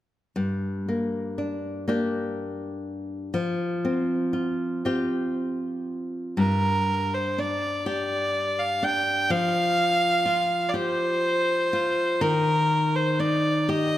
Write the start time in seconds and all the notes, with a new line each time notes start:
0.36 G2
0.89 A#3
1.38 D4
1.88 A#3 D4 G4
3.34 F3
3.85 C4
4.33 F4
4.85 C4 F4 G4
6.37 G2 A#4
7.14 C5
7.38 D4 D5
7.86 G4 D5
8.59 F5
8.83 D4 G5
9.30 F3 F5
10.26 F4
10.69 D5
10.74 G4 C5
11.73 F4
12.21 D#3 A#4
12.96 C5
13.20 D#4 D5
13.69 G4 D#5